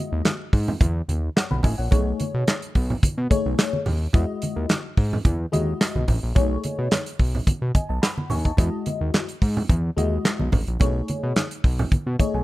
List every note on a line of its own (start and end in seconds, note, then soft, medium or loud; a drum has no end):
0.00 0.34 G#3 medium
0.00 0.34 E4 medium
0.00 0.34 F#4 medium
0.00 0.34 D#5 medium
0.12 0.22 D#2 medium
0.25 snare loud
0.25 clap medium
0.25 closed hi-hat medium
0.25 muted conga soft
0.25 high conga soft
0.53 0.74 G#2 medium
0.53 kick medium
0.53 open hi-hat medium
0.53 muted conga soft
0.68 low conga medium
0.81 1.02 E2 loud
0.81 kick loud
0.81 closed hi-hat medium
0.81 muted conga soft
0.81 high conga medium
1.08 1.30 D#2 medium
1.08 closed hi-hat medium
1.08 high conga medium
1.36 1.51 C#5 medium
1.36 1.50 F#5 medium
1.36 snare loud
1.36 clap medium
1.36 closed hi-hat medium
1.51 1.61 B1 medium
1.51 1.64 F#5 medium
1.51 1.63 B5 medium
1.51 high conga medium
1.63 1.75 A1 medium
1.63 1.78 D#5 medium
1.63 1.78 G#5 medium
1.63 kick medium
1.63 open hi-hat medium
1.63 muted conga soft
1.63 low conga medium
1.78 1.89 A#1 medium
1.78 1.90 C#5 medium
1.78 2.05 F#5 medium
1.91 2.13 B1 loud
1.91 2.56 A3 medium
1.91 2.56 D#4 medium
1.91 2.56 G#4 medium
1.91 2.56 C#5 medium
1.91 kick loud
1.91 closed hi-hat medium
1.91 muted conga soft
1.91 low conga medium
2.20 closed hi-hat medium
2.20 muted conga soft
2.20 high conga medium
2.34 2.44 B2 loud
2.47 snare loud
2.47 clap loud
2.47 closed hi-hat medium
2.47 muted conga soft
2.47 high conga soft
2.62 closed hi-hat medium
2.75 2.96 B1 medium
2.75 kick medium
2.75 open hi-hat medium
2.75 muted conga soft
2.90 low conga medium
3.03 3.09 B2 medium
3.03 kick loud
3.03 closed hi-hat loud
3.03 muted conga soft
3.03 high conga medium
3.18 3.28 B2 loud
3.30 3.79 A3 medium
3.30 3.79 D#4 medium
3.30 3.79 G#4 medium
3.30 3.79 C#5 loud
3.30 kick loud
3.30 closed hi-hat medium
3.30 muted conga soft
3.30 high conga medium
3.46 3.55 B1 medium
3.58 snare loud
3.58 clap loud
3.58 closed hi-hat medium
3.58 muted conga soft
3.73 high conga medium
3.86 4.07 D#2 medium
3.86 open hi-hat medium
3.86 muted conga soft
3.86 low conga medium
4.13 4.25 E2 loud
4.13 4.79 G#3 medium
4.13 4.79 E4 medium
4.13 4.79 F#4 medium
4.13 4.79 D#5 medium
4.13 kick loud
4.13 closed hi-hat medium
4.13 muted conga soft
4.13 low conga medium
4.42 closed hi-hat medium
4.42 muted conga soft
4.42 high conga medium
4.56 4.66 D#2 medium
4.69 snare loud
4.69 clap loud
4.69 closed hi-hat medium
4.69 muted conga soft
4.69 high conga soft
4.97 5.18 G#2 medium
4.97 kick loud
4.97 open hi-hat medium
4.97 muted conga soft
5.13 low conga medium
5.25 5.46 E2 medium
5.25 kick loud
5.25 closed hi-hat loud
5.25 high conga medium
5.52 5.74 D#2 medium
5.52 6.01 G#3 medium
5.52 6.01 E4 medium
5.52 6.01 F#4 medium
5.52 6.01 D#5 loud
5.52 closed hi-hat medium
5.52 muted conga soft
5.52 high conga medium
5.81 snare loud
5.81 clap loud
5.81 closed hi-hat medium
5.95 6.05 B1 medium
5.95 high conga medium
6.08 6.19 A1 medium
6.08 kick medium
6.08 open hi-hat medium
6.08 muted conga soft
6.08 low conga medium
6.23 6.33 A#1 medium
6.35 6.57 B1 loud
6.35 7.00 A3 medium
6.35 7.00 D#4 medium
6.35 7.01 G#4 medium
6.35 7.01 C#5 loud
6.35 kick loud
6.35 closed hi-hat medium
6.35 low conga medium
6.64 closed hi-hat medium
6.64 high conga medium
6.79 6.88 B2 medium
6.91 snare loud
6.91 clap medium
6.91 closed hi-hat medium
6.91 muted conga soft
6.91 high conga soft
7.06 closed hi-hat medium
7.19 7.41 B1 medium
7.19 kick medium
7.19 open hi-hat medium
7.35 low conga medium
7.47 7.53 B2 soft
7.47 kick loud
7.47 closed hi-hat loud
7.47 muted conga soft
7.47 high conga medium
7.62 7.72 B2 medium
7.75 7.88 D#5 medium
7.75 7.89 G#5 medium
7.75 kick loud
7.75 closed hi-hat medium
7.75 muted conga soft
7.75 high conga medium
7.89 8.00 B1 medium
7.89 8.02 D#5 medium
7.89 8.02 A5 medium
8.02 8.29 F#5 medium
8.02 8.29 B5 medium
8.02 snare loud
8.02 clap loud
8.02 closed hi-hat medium
8.18 high conga medium
8.30 8.52 D#2 medium
8.30 8.45 G#5 medium
8.30 8.44 C#6 medium
8.30 open hi-hat medium
8.30 low conga medium
8.45 8.58 D#5 medium
8.45 8.72 A5 medium
8.45 kick medium
8.45 closed hi-hat soft
8.57 8.70 E2 loud
8.57 9.23 G#3 medium
8.57 9.23 E4 medium
8.57 9.23 F#4 medium
8.57 9.23 D#5 medium
8.57 kick loud
8.57 closed hi-hat medium
8.57 muted conga soft
8.57 low conga medium
8.86 closed hi-hat medium
8.86 muted conga soft
8.86 high conga medium
9.01 9.11 D#2 medium
9.14 snare loud
9.14 clap medium
9.14 closed hi-hat medium
9.14 muted conga soft
9.14 high conga soft
9.29 closed hi-hat medium
9.42 9.63 G#2 medium
9.42 kick medium
9.42 open hi-hat medium
9.57 low conga medium
9.69 9.91 E2 loud
9.69 kick loud
9.69 closed hi-hat medium
9.69 high conga medium
9.97 10.18 D#2 medium
9.97 10.45 G#3 medium
9.97 10.46 E4 medium
9.97 10.46 F#4 medium
9.97 10.46 D#5 medium
9.97 closed hi-hat medium
9.97 muted conga soft
9.97 high conga medium
10.24 snare loud
10.24 clap loud
10.24 closed hi-hat medium
10.24 muted conga soft
10.39 10.50 B1 medium
10.39 high conga medium
10.52 10.64 A1 medium
10.52 kick medium
10.52 open hi-hat medium
10.52 muted conga soft
10.52 low conga medium
10.68 10.78 A#1 medium
10.68 closed hi-hat soft
10.80 11.02 B1 loud
10.80 11.45 A3 medium
10.80 11.45 D#4 medium
10.80 11.45 G#4 medium
10.80 11.46 C#5 medium
10.80 kick loud
10.80 closed hi-hat medium
10.80 muted conga soft
10.80 low conga medium
11.08 closed hi-hat medium
11.08 muted conga soft
11.08 high conga medium
11.23 11.33 B2 medium
11.36 snare loud
11.36 clap loud
11.36 closed hi-hat medium
11.36 high conga medium
11.51 closed hi-hat medium
11.64 11.85 B1 medium
11.64 kick medium
11.64 open hi-hat medium
11.79 low conga medium
11.92 11.98 B2 medium
11.92 kick loud
11.92 closed hi-hat medium
11.92 high conga medium
12.07 12.16 B2 medium
12.19 12.44 A3 medium
12.19 12.44 D#4 medium
12.19 12.44 G#4 medium
12.19 12.44 C#5 medium
12.19 12.33 D#5 medium
12.19 kick medium
12.19 closed hi-hat medium
12.19 high conga medium
12.34 12.44 B1 medium
12.34 12.44 G#5 medium